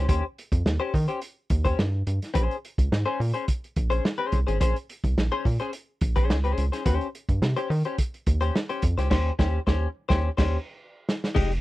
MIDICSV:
0, 0, Header, 1, 4, 480
1, 0, Start_track
1, 0, Tempo, 563380
1, 79, Time_signature, 4, 2, 24, 8
1, 9890, End_track
2, 0, Start_track
2, 0, Title_t, "Clean electric guitar"
2, 0, Program_c, 0, 27
2, 72, Note_on_c, 0, 61, 89
2, 76, Note_on_c, 0, 67, 99
2, 80, Note_on_c, 0, 72, 92
2, 199, Note_off_c, 0, 61, 0
2, 201, Note_off_c, 0, 67, 0
2, 202, Note_off_c, 0, 72, 0
2, 678, Note_on_c, 0, 72, 85
2, 685, Note_on_c, 0, 67, 81
2, 689, Note_on_c, 0, 61, 64
2, 792, Note_off_c, 0, 72, 0
2, 796, Note_off_c, 0, 67, 0
2, 797, Note_off_c, 0, 61, 0
2, 919, Note_on_c, 0, 72, 53
2, 925, Note_on_c, 0, 67, 59
2, 931, Note_on_c, 0, 61, 43
2, 1009, Note_off_c, 0, 72, 0
2, 1012, Note_off_c, 0, 67, 0
2, 1015, Note_off_c, 0, 61, 0
2, 1402, Note_on_c, 0, 72, 76
2, 1410, Note_on_c, 0, 67, 66
2, 1414, Note_on_c, 0, 61, 68
2, 1515, Note_off_c, 0, 72, 0
2, 1519, Note_off_c, 0, 67, 0
2, 1521, Note_off_c, 0, 61, 0
2, 1992, Note_on_c, 0, 61, 86
2, 1998, Note_on_c, 0, 68, 92
2, 2002, Note_on_c, 0, 72, 99
2, 2172, Note_off_c, 0, 61, 0
2, 2175, Note_off_c, 0, 68, 0
2, 2177, Note_off_c, 0, 72, 0
2, 2604, Note_on_c, 0, 72, 81
2, 2607, Note_on_c, 0, 68, 77
2, 2616, Note_on_c, 0, 61, 78
2, 2717, Note_off_c, 0, 72, 0
2, 2718, Note_off_c, 0, 68, 0
2, 2722, Note_off_c, 0, 61, 0
2, 2843, Note_on_c, 0, 72, 60
2, 2850, Note_on_c, 0, 68, 63
2, 2857, Note_on_c, 0, 61, 51
2, 2933, Note_off_c, 0, 72, 0
2, 2936, Note_off_c, 0, 68, 0
2, 2940, Note_off_c, 0, 61, 0
2, 3324, Note_on_c, 0, 72, 81
2, 3327, Note_on_c, 0, 68, 60
2, 3330, Note_on_c, 0, 61, 63
2, 3437, Note_off_c, 0, 72, 0
2, 3439, Note_off_c, 0, 68, 0
2, 3440, Note_off_c, 0, 61, 0
2, 3561, Note_on_c, 0, 72, 87
2, 3567, Note_on_c, 0, 68, 68
2, 3573, Note_on_c, 0, 61, 65
2, 3732, Note_off_c, 0, 72, 0
2, 3735, Note_off_c, 0, 68, 0
2, 3738, Note_off_c, 0, 61, 0
2, 3806, Note_on_c, 0, 72, 75
2, 3810, Note_on_c, 0, 68, 66
2, 3817, Note_on_c, 0, 61, 66
2, 3895, Note_off_c, 0, 72, 0
2, 3896, Note_off_c, 0, 68, 0
2, 3900, Note_off_c, 0, 61, 0
2, 3922, Note_on_c, 0, 61, 91
2, 3928, Note_on_c, 0, 68, 100
2, 3931, Note_on_c, 0, 72, 105
2, 4047, Note_off_c, 0, 61, 0
2, 4049, Note_off_c, 0, 68, 0
2, 4051, Note_off_c, 0, 72, 0
2, 4531, Note_on_c, 0, 72, 85
2, 4534, Note_on_c, 0, 68, 71
2, 4541, Note_on_c, 0, 61, 69
2, 4641, Note_off_c, 0, 72, 0
2, 4642, Note_off_c, 0, 68, 0
2, 4646, Note_off_c, 0, 61, 0
2, 4769, Note_on_c, 0, 72, 67
2, 4777, Note_on_c, 0, 68, 65
2, 4780, Note_on_c, 0, 61, 51
2, 4856, Note_off_c, 0, 72, 0
2, 4860, Note_off_c, 0, 68, 0
2, 4862, Note_off_c, 0, 61, 0
2, 5247, Note_on_c, 0, 72, 76
2, 5251, Note_on_c, 0, 68, 70
2, 5258, Note_on_c, 0, 61, 73
2, 5415, Note_off_c, 0, 72, 0
2, 5417, Note_off_c, 0, 68, 0
2, 5421, Note_off_c, 0, 61, 0
2, 5486, Note_on_c, 0, 72, 74
2, 5493, Note_on_c, 0, 68, 65
2, 5497, Note_on_c, 0, 61, 61
2, 5655, Note_off_c, 0, 72, 0
2, 5658, Note_off_c, 0, 68, 0
2, 5660, Note_off_c, 0, 61, 0
2, 5728, Note_on_c, 0, 72, 62
2, 5733, Note_on_c, 0, 68, 61
2, 5737, Note_on_c, 0, 61, 53
2, 5815, Note_off_c, 0, 72, 0
2, 5818, Note_off_c, 0, 68, 0
2, 5820, Note_off_c, 0, 61, 0
2, 5840, Note_on_c, 0, 61, 93
2, 5844, Note_on_c, 0, 67, 98
2, 5848, Note_on_c, 0, 72, 100
2, 6017, Note_off_c, 0, 61, 0
2, 6019, Note_off_c, 0, 67, 0
2, 6021, Note_off_c, 0, 72, 0
2, 6446, Note_on_c, 0, 72, 86
2, 6452, Note_on_c, 0, 67, 72
2, 6457, Note_on_c, 0, 61, 73
2, 6558, Note_off_c, 0, 72, 0
2, 6561, Note_off_c, 0, 67, 0
2, 6563, Note_off_c, 0, 61, 0
2, 6691, Note_on_c, 0, 72, 61
2, 6695, Note_on_c, 0, 67, 61
2, 6701, Note_on_c, 0, 61, 51
2, 6777, Note_off_c, 0, 72, 0
2, 6779, Note_off_c, 0, 67, 0
2, 6782, Note_off_c, 0, 61, 0
2, 7164, Note_on_c, 0, 72, 82
2, 7171, Note_on_c, 0, 67, 65
2, 7177, Note_on_c, 0, 61, 65
2, 7276, Note_off_c, 0, 72, 0
2, 7280, Note_off_c, 0, 67, 0
2, 7283, Note_off_c, 0, 61, 0
2, 7407, Note_on_c, 0, 72, 73
2, 7410, Note_on_c, 0, 67, 72
2, 7415, Note_on_c, 0, 61, 65
2, 7518, Note_off_c, 0, 72, 0
2, 7520, Note_off_c, 0, 67, 0
2, 7522, Note_off_c, 0, 61, 0
2, 7647, Note_on_c, 0, 72, 71
2, 7655, Note_on_c, 0, 67, 64
2, 7661, Note_on_c, 0, 61, 61
2, 7734, Note_off_c, 0, 72, 0
2, 7738, Note_off_c, 0, 67, 0
2, 7741, Note_off_c, 0, 61, 0
2, 7755, Note_on_c, 0, 61, 111
2, 7762, Note_on_c, 0, 67, 112
2, 7766, Note_on_c, 0, 72, 121
2, 7924, Note_off_c, 0, 61, 0
2, 7928, Note_off_c, 0, 67, 0
2, 7930, Note_off_c, 0, 72, 0
2, 7998, Note_on_c, 0, 61, 96
2, 8001, Note_on_c, 0, 67, 97
2, 8006, Note_on_c, 0, 72, 93
2, 8165, Note_off_c, 0, 61, 0
2, 8168, Note_off_c, 0, 67, 0
2, 8171, Note_off_c, 0, 72, 0
2, 8236, Note_on_c, 0, 72, 94
2, 8245, Note_on_c, 0, 67, 102
2, 8247, Note_on_c, 0, 61, 107
2, 8404, Note_off_c, 0, 72, 0
2, 8410, Note_off_c, 0, 67, 0
2, 8411, Note_off_c, 0, 61, 0
2, 8594, Note_on_c, 0, 72, 99
2, 8600, Note_on_c, 0, 67, 98
2, 8605, Note_on_c, 0, 61, 97
2, 8761, Note_off_c, 0, 72, 0
2, 8765, Note_off_c, 0, 67, 0
2, 8767, Note_off_c, 0, 61, 0
2, 8838, Note_on_c, 0, 72, 91
2, 8844, Note_on_c, 0, 67, 91
2, 8848, Note_on_c, 0, 61, 101
2, 9004, Note_off_c, 0, 72, 0
2, 9007, Note_off_c, 0, 67, 0
2, 9009, Note_off_c, 0, 61, 0
2, 9668, Note_on_c, 0, 56, 106
2, 9673, Note_on_c, 0, 63, 91
2, 9680, Note_on_c, 0, 67, 93
2, 9796, Note_off_c, 0, 56, 0
2, 9799, Note_off_c, 0, 63, 0
2, 9802, Note_off_c, 0, 67, 0
2, 9890, End_track
3, 0, Start_track
3, 0, Title_t, "Analog synth bass"
3, 0, Program_c, 1, 38
3, 75, Note_on_c, 1, 39, 120
3, 184, Note_off_c, 1, 39, 0
3, 444, Note_on_c, 1, 41, 89
3, 541, Note_off_c, 1, 41, 0
3, 559, Note_on_c, 1, 39, 102
3, 667, Note_off_c, 1, 39, 0
3, 802, Note_on_c, 1, 51, 127
3, 909, Note_off_c, 1, 51, 0
3, 1283, Note_on_c, 1, 39, 100
3, 1485, Note_off_c, 1, 39, 0
3, 1528, Note_on_c, 1, 43, 92
3, 1728, Note_off_c, 1, 43, 0
3, 1763, Note_on_c, 1, 43, 83
3, 1870, Note_off_c, 1, 43, 0
3, 2006, Note_on_c, 1, 34, 119
3, 2112, Note_off_c, 1, 34, 0
3, 2369, Note_on_c, 1, 37, 85
3, 2465, Note_off_c, 1, 37, 0
3, 2486, Note_on_c, 1, 44, 107
3, 2593, Note_off_c, 1, 44, 0
3, 2726, Note_on_c, 1, 46, 116
3, 2833, Note_off_c, 1, 46, 0
3, 3209, Note_on_c, 1, 34, 86
3, 3410, Note_off_c, 1, 34, 0
3, 3686, Note_on_c, 1, 36, 79
3, 3793, Note_off_c, 1, 36, 0
3, 3817, Note_on_c, 1, 32, 87
3, 3910, Note_off_c, 1, 32, 0
3, 3929, Note_on_c, 1, 34, 114
3, 4035, Note_off_c, 1, 34, 0
3, 4293, Note_on_c, 1, 36, 93
3, 4388, Note_off_c, 1, 36, 0
3, 4409, Note_on_c, 1, 34, 95
3, 4515, Note_off_c, 1, 34, 0
3, 4647, Note_on_c, 1, 46, 110
3, 4753, Note_off_c, 1, 46, 0
3, 5125, Note_on_c, 1, 34, 81
3, 5370, Note_on_c, 1, 37, 85
3, 5382, Note_off_c, 1, 34, 0
3, 5570, Note_off_c, 1, 37, 0
3, 5605, Note_on_c, 1, 37, 85
3, 5712, Note_off_c, 1, 37, 0
3, 5846, Note_on_c, 1, 39, 117
3, 5953, Note_off_c, 1, 39, 0
3, 6210, Note_on_c, 1, 43, 79
3, 6306, Note_off_c, 1, 43, 0
3, 6319, Note_on_c, 1, 48, 91
3, 6429, Note_off_c, 1, 48, 0
3, 6561, Note_on_c, 1, 51, 120
3, 6670, Note_off_c, 1, 51, 0
3, 7046, Note_on_c, 1, 39, 92
3, 7247, Note_off_c, 1, 39, 0
3, 7525, Note_on_c, 1, 41, 104
3, 7631, Note_off_c, 1, 41, 0
3, 7649, Note_on_c, 1, 37, 80
3, 7745, Note_off_c, 1, 37, 0
3, 7762, Note_on_c, 1, 39, 109
3, 7928, Note_off_c, 1, 39, 0
3, 8000, Note_on_c, 1, 39, 100
3, 8167, Note_off_c, 1, 39, 0
3, 8241, Note_on_c, 1, 39, 91
3, 8408, Note_off_c, 1, 39, 0
3, 8607, Note_on_c, 1, 39, 117
3, 8768, Note_off_c, 1, 39, 0
3, 8847, Note_on_c, 1, 39, 91
3, 9009, Note_off_c, 1, 39, 0
3, 9679, Note_on_c, 1, 29, 108
3, 9890, Note_off_c, 1, 29, 0
3, 9890, End_track
4, 0, Start_track
4, 0, Title_t, "Drums"
4, 75, Note_on_c, 9, 42, 86
4, 76, Note_on_c, 9, 36, 119
4, 160, Note_off_c, 9, 42, 0
4, 161, Note_off_c, 9, 36, 0
4, 327, Note_on_c, 9, 42, 72
4, 412, Note_off_c, 9, 42, 0
4, 442, Note_on_c, 9, 36, 98
4, 445, Note_on_c, 9, 42, 55
4, 527, Note_off_c, 9, 36, 0
4, 530, Note_off_c, 9, 42, 0
4, 561, Note_on_c, 9, 38, 110
4, 647, Note_off_c, 9, 38, 0
4, 799, Note_on_c, 9, 36, 89
4, 810, Note_on_c, 9, 46, 61
4, 885, Note_off_c, 9, 36, 0
4, 895, Note_off_c, 9, 46, 0
4, 921, Note_on_c, 9, 42, 45
4, 1006, Note_off_c, 9, 42, 0
4, 1035, Note_on_c, 9, 42, 85
4, 1121, Note_off_c, 9, 42, 0
4, 1276, Note_on_c, 9, 42, 69
4, 1280, Note_on_c, 9, 36, 107
4, 1361, Note_off_c, 9, 42, 0
4, 1366, Note_off_c, 9, 36, 0
4, 1403, Note_on_c, 9, 42, 41
4, 1408, Note_on_c, 9, 36, 98
4, 1489, Note_off_c, 9, 42, 0
4, 1493, Note_off_c, 9, 36, 0
4, 1524, Note_on_c, 9, 38, 121
4, 1609, Note_off_c, 9, 38, 0
4, 1762, Note_on_c, 9, 42, 78
4, 1847, Note_off_c, 9, 42, 0
4, 1893, Note_on_c, 9, 42, 56
4, 1897, Note_on_c, 9, 38, 32
4, 1979, Note_off_c, 9, 42, 0
4, 1982, Note_off_c, 9, 38, 0
4, 2001, Note_on_c, 9, 42, 81
4, 2004, Note_on_c, 9, 36, 125
4, 2087, Note_off_c, 9, 42, 0
4, 2089, Note_off_c, 9, 36, 0
4, 2139, Note_on_c, 9, 42, 31
4, 2224, Note_off_c, 9, 42, 0
4, 2255, Note_on_c, 9, 42, 70
4, 2340, Note_off_c, 9, 42, 0
4, 2370, Note_on_c, 9, 36, 95
4, 2374, Note_on_c, 9, 42, 54
4, 2456, Note_off_c, 9, 36, 0
4, 2460, Note_off_c, 9, 42, 0
4, 2491, Note_on_c, 9, 38, 99
4, 2576, Note_off_c, 9, 38, 0
4, 2737, Note_on_c, 9, 46, 65
4, 2823, Note_off_c, 9, 46, 0
4, 2845, Note_on_c, 9, 42, 50
4, 2931, Note_off_c, 9, 42, 0
4, 2964, Note_on_c, 9, 42, 85
4, 2966, Note_on_c, 9, 36, 89
4, 3050, Note_off_c, 9, 42, 0
4, 3052, Note_off_c, 9, 36, 0
4, 3101, Note_on_c, 9, 42, 30
4, 3186, Note_off_c, 9, 42, 0
4, 3205, Note_on_c, 9, 42, 74
4, 3208, Note_on_c, 9, 36, 98
4, 3290, Note_off_c, 9, 42, 0
4, 3293, Note_off_c, 9, 36, 0
4, 3334, Note_on_c, 9, 42, 46
4, 3419, Note_off_c, 9, 42, 0
4, 3452, Note_on_c, 9, 38, 118
4, 3537, Note_off_c, 9, 38, 0
4, 3680, Note_on_c, 9, 42, 71
4, 3686, Note_on_c, 9, 36, 92
4, 3766, Note_off_c, 9, 42, 0
4, 3771, Note_off_c, 9, 36, 0
4, 3817, Note_on_c, 9, 42, 52
4, 3902, Note_off_c, 9, 42, 0
4, 3926, Note_on_c, 9, 36, 114
4, 3926, Note_on_c, 9, 42, 86
4, 4011, Note_off_c, 9, 36, 0
4, 4011, Note_off_c, 9, 42, 0
4, 4057, Note_on_c, 9, 42, 36
4, 4142, Note_off_c, 9, 42, 0
4, 4171, Note_on_c, 9, 42, 73
4, 4256, Note_off_c, 9, 42, 0
4, 4292, Note_on_c, 9, 36, 92
4, 4296, Note_on_c, 9, 42, 49
4, 4377, Note_off_c, 9, 36, 0
4, 4382, Note_off_c, 9, 42, 0
4, 4411, Note_on_c, 9, 38, 99
4, 4496, Note_off_c, 9, 38, 0
4, 4646, Note_on_c, 9, 36, 89
4, 4654, Note_on_c, 9, 46, 58
4, 4731, Note_off_c, 9, 36, 0
4, 4739, Note_off_c, 9, 46, 0
4, 4766, Note_on_c, 9, 42, 51
4, 4851, Note_off_c, 9, 42, 0
4, 4881, Note_on_c, 9, 42, 82
4, 4966, Note_off_c, 9, 42, 0
4, 5120, Note_on_c, 9, 42, 77
4, 5125, Note_on_c, 9, 36, 105
4, 5205, Note_off_c, 9, 42, 0
4, 5210, Note_off_c, 9, 36, 0
4, 5247, Note_on_c, 9, 42, 46
4, 5252, Note_on_c, 9, 36, 91
4, 5332, Note_off_c, 9, 42, 0
4, 5337, Note_off_c, 9, 36, 0
4, 5369, Note_on_c, 9, 38, 127
4, 5454, Note_off_c, 9, 38, 0
4, 5490, Note_on_c, 9, 42, 33
4, 5575, Note_off_c, 9, 42, 0
4, 5602, Note_on_c, 9, 42, 81
4, 5687, Note_off_c, 9, 42, 0
4, 5734, Note_on_c, 9, 42, 58
4, 5738, Note_on_c, 9, 38, 33
4, 5819, Note_off_c, 9, 42, 0
4, 5823, Note_off_c, 9, 38, 0
4, 5841, Note_on_c, 9, 42, 84
4, 5843, Note_on_c, 9, 36, 121
4, 5926, Note_off_c, 9, 42, 0
4, 5928, Note_off_c, 9, 36, 0
4, 5972, Note_on_c, 9, 42, 33
4, 6057, Note_off_c, 9, 42, 0
4, 6090, Note_on_c, 9, 42, 67
4, 6176, Note_off_c, 9, 42, 0
4, 6208, Note_on_c, 9, 36, 94
4, 6210, Note_on_c, 9, 42, 48
4, 6294, Note_off_c, 9, 36, 0
4, 6295, Note_off_c, 9, 42, 0
4, 6325, Note_on_c, 9, 38, 123
4, 6410, Note_off_c, 9, 38, 0
4, 6448, Note_on_c, 9, 42, 39
4, 6533, Note_off_c, 9, 42, 0
4, 6570, Note_on_c, 9, 46, 57
4, 6655, Note_off_c, 9, 46, 0
4, 6685, Note_on_c, 9, 42, 53
4, 6770, Note_off_c, 9, 42, 0
4, 6802, Note_on_c, 9, 42, 93
4, 6803, Note_on_c, 9, 36, 83
4, 6887, Note_off_c, 9, 42, 0
4, 6888, Note_off_c, 9, 36, 0
4, 6935, Note_on_c, 9, 42, 35
4, 7020, Note_off_c, 9, 42, 0
4, 7042, Note_on_c, 9, 42, 77
4, 7045, Note_on_c, 9, 36, 114
4, 7127, Note_off_c, 9, 42, 0
4, 7130, Note_off_c, 9, 36, 0
4, 7172, Note_on_c, 9, 42, 44
4, 7257, Note_off_c, 9, 42, 0
4, 7289, Note_on_c, 9, 38, 114
4, 7374, Note_off_c, 9, 38, 0
4, 7408, Note_on_c, 9, 42, 39
4, 7493, Note_off_c, 9, 42, 0
4, 7516, Note_on_c, 9, 42, 85
4, 7521, Note_on_c, 9, 36, 94
4, 7601, Note_off_c, 9, 42, 0
4, 7606, Note_off_c, 9, 36, 0
4, 7654, Note_on_c, 9, 42, 59
4, 7658, Note_on_c, 9, 38, 30
4, 7739, Note_off_c, 9, 42, 0
4, 7743, Note_off_c, 9, 38, 0
4, 7759, Note_on_c, 9, 49, 90
4, 7761, Note_on_c, 9, 36, 108
4, 7764, Note_on_c, 9, 38, 109
4, 7844, Note_off_c, 9, 49, 0
4, 7846, Note_off_c, 9, 36, 0
4, 7849, Note_off_c, 9, 38, 0
4, 8000, Note_on_c, 9, 36, 103
4, 8002, Note_on_c, 9, 38, 107
4, 8085, Note_off_c, 9, 36, 0
4, 8087, Note_off_c, 9, 38, 0
4, 8240, Note_on_c, 9, 36, 102
4, 8243, Note_on_c, 9, 38, 90
4, 8325, Note_off_c, 9, 36, 0
4, 8329, Note_off_c, 9, 38, 0
4, 8606, Note_on_c, 9, 36, 110
4, 8607, Note_on_c, 9, 38, 107
4, 8692, Note_off_c, 9, 36, 0
4, 8692, Note_off_c, 9, 38, 0
4, 8844, Note_on_c, 9, 49, 89
4, 8847, Note_on_c, 9, 36, 113
4, 8849, Note_on_c, 9, 38, 107
4, 8929, Note_off_c, 9, 49, 0
4, 8932, Note_off_c, 9, 36, 0
4, 8934, Note_off_c, 9, 38, 0
4, 9445, Note_on_c, 9, 38, 105
4, 9531, Note_off_c, 9, 38, 0
4, 9575, Note_on_c, 9, 38, 81
4, 9660, Note_off_c, 9, 38, 0
4, 9679, Note_on_c, 9, 36, 127
4, 9680, Note_on_c, 9, 49, 112
4, 9764, Note_off_c, 9, 36, 0
4, 9765, Note_off_c, 9, 49, 0
4, 9812, Note_on_c, 9, 42, 37
4, 9890, Note_off_c, 9, 42, 0
4, 9890, End_track
0, 0, End_of_file